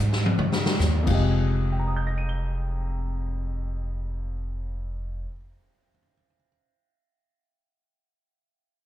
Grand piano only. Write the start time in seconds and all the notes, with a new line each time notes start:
1.03 F2 F3
1.08 G#3 G4
1.14 D#5
1.72 G5
1.79 A#5
1.88 D#6
1.97 G6
2.07 A#6
2.18 D#7
2.29 G7